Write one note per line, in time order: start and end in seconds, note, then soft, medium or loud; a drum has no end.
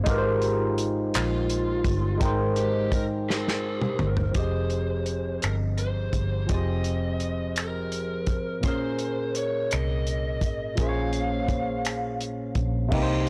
0.04 2.15 G#3 medium
0.04 2.16 D#4 medium
0.04 2.17 F4 medium
0.04 kick loud
0.04 closed hi-hat medium
0.08 1.10 G#1 loud
0.08 2.18 G4 medium
0.08 2.19 A#4 medium
0.08 0.15 B4 medium
0.18 2.23 C5 medium
0.42 closed hi-hat soft
0.78 closed hi-hat medium
1.14 1.82 A#1 medium
1.14 2.18 F4 medium
1.14 clap loud
1.14 closed hi-hat medium
1.50 closed hi-hat soft
1.84 2.17 G1 medium
1.84 kick medium
1.84 closed hi-hat medium
2.18 4.30 G#3 medium
2.18 4.31 D#4 medium
2.18 kick loud
2.18 closed hi-hat medium
2.22 3.96 G#1 medium
2.22 2.32 D#4 medium
2.22 4.32 A#4 medium
2.22 4.33 C5 medium
2.22 4.32 G5 medium
2.56 2.90 G4 medium
2.56 closed hi-hat soft
2.92 3.03 A#4 medium
2.92 kick medium
2.92 closed hi-hat medium
3.30 3.82 G#4 medium
3.30 4.35 A#4 medium
3.30 snare medium
3.48 snare medium
3.82 4.05 G4 medium
3.82 mid tom medium
3.99 4.33 G1 medium
3.99 mid tom loud
4.17 floor tom loud
4.31 6.44 F3 medium
4.31 6.45 C4 soft
4.31 kick medium
4.31 closed hi-hat medium
4.36 5.39 F1 medium
4.36 6.46 G4 soft
4.36 6.47 G#4 soft
4.36 5.43 C5 medium
4.36 6.48 D#5 medium
4.70 closed hi-hat soft
5.06 closed hi-hat soft
5.42 6.10 G1 medium
5.42 5.53 A#4 medium
5.42 finger snap medium
5.42 closed hi-hat medium
5.78 6.52 C5 medium
5.78 closed hi-hat soft
6.13 6.46 G1 medium
6.13 kick medium
6.13 closed hi-hat soft
6.46 8.28 F1 medium
6.46 8.58 F3 medium
6.46 8.59 C4 medium
6.46 kick loud
6.46 closed hi-hat medium
6.50 8.60 G4 soft
6.50 8.61 G#4 soft
6.50 8.62 C5 medium
6.50 7.60 D#5 medium
6.84 closed hi-hat soft
7.20 closed hi-hat soft
7.56 8.64 A#4 medium
7.56 finger snap loud
7.56 closed hi-hat medium
7.92 closed hi-hat soft
8.27 8.64 G#1 medium
8.27 kick medium
8.27 closed hi-hat soft
8.60 10.72 A#2 medium
8.60 10.73 A#3 soft
8.60 10.74 C#4 medium
8.60 kick loud
8.60 closed hi-hat medium
8.65 10.75 G#4 soft
8.65 10.76 A#4 medium
8.65 9.36 C5 medium
8.99 closed hi-hat soft
9.35 9.73 C#5 medium
9.35 closed hi-hat soft
9.71 10.42 C2 medium
9.71 10.79 D#5 medium
9.71 finger snap loud
9.71 closed hi-hat medium
10.07 closed hi-hat soft
10.41 10.74 G#1 medium
10.41 kick medium
10.41 closed hi-hat soft
10.75 12.53 A#1 medium
10.75 12.87 A#2 medium
10.75 12.88 A#3 medium
10.75 12.89 C#4 medium
10.75 kick loud
10.75 closed hi-hat medium
10.79 12.90 G#4 medium
10.79 10.87 C5 medium
10.79 12.17 F5 medium
10.89 12.94 C#5 medium
11.13 closed hi-hat soft
11.48 kick medium
11.48 closed hi-hat soft
11.85 finger snap loud
11.85 closed hi-hat medium
12.21 closed hi-hat soft
12.55 12.89 A#1 medium
12.55 kick medium
12.55 closed hi-hat soft
12.88 13.29 C3 medium
12.88 13.29 A#3 medium
12.88 13.29 D#4 medium
12.88 kick loud
12.88 crash loud
12.93 13.29 C2 loud
12.93 13.29 G4 medium
12.93 13.00 B4 medium
13.02 13.29 C5 medium